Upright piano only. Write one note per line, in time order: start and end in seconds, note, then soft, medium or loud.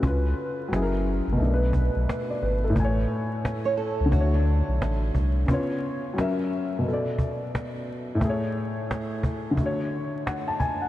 0.00 0.70 C#3 medium
0.00 0.70 C#4 medium
0.00 0.24 F#4 medium
0.04 0.72 F4 medium
0.04 0.73 B4 medium
0.68 1.38 F#3 medium
0.68 1.39 C#4 medium
0.73 1.40 E4 medium
0.73 0.82 G#4 medium
0.82 1.45 A#4 medium
1.32 2.70 B2 medium
1.37 2.72 A3 medium
1.42 2.74 D4 medium
1.47 1.52 A#4 medium
1.54 1.80 B4 medium
2.30 2.42 D5 medium
2.42 2.63 B4 medium
2.64 2.96 A4 medium
2.70 4.06 A2 medium
2.75 4.09 A3 medium
2.80 4.11 G#5 medium
2.85 4.14 C#5 medium
4.06 5.43 D3 medium
4.11 5.45 A3 medium
4.16 4.22 E4 soft
4.21 5.51 F#4 medium
4.21 5.50 C#5 medium
5.46 6.16 C#3 medium
5.46 6.17 B3 medium
5.51 6.18 F4 medium
5.51 6.19 C#5 medium
6.13 6.83 F#3 medium
6.13 6.85 C#4 medium
6.19 6.86 A#4 medium
6.19 6.87 E5 medium
6.79 8.15 B2 medium
6.84 8.18 B3 medium
6.88 8.20 A4 medium
6.93 8.23 D5 medium
8.15 9.52 A2 medium
8.20 9.54 A3 medium
8.25 9.57 G#4 medium
8.29 9.59 C#5 medium
9.51 10.88 D3 medium
9.56 10.89 A3 medium
9.61 10.89 F#4 medium
9.66 10.89 C#5 medium
10.26 10.47 F#5 medium
10.48 10.59 A5 medium
10.60 10.81 G#5 medium
10.82 10.89 F#5 medium